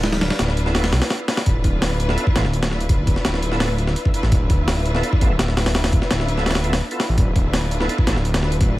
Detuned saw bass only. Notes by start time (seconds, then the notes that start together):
Already playing: D1
0.22 D1
0.39 D1
0.93 B1
1.46 D1
2.36 A1
2.45 D1
3.07 D1
3.25 D1
4.23 A1
4.32 D1
5.21 A1
5.30 D1
5.93 D1
6.11 D1
7.09 A1
7.18 D1
8.07 A1
8.16 D1